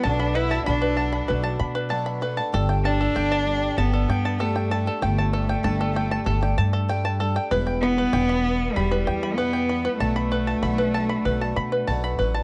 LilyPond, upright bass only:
\new Staff \with { instrumentName = "Upright bass" } { \clef bass \time 4/4 \key g \major \tempo 4 = 96 b,,4 b,,4 b,,8 b,4. | g,,4 g,,4 g,,8 g,4. | g,,4 g,,4 g,,8 g,4. | e,,4 e,,4 e,,8 e,4. |
b,,4 b,,4 b,,8 b,8 b,,8 a,,8 | }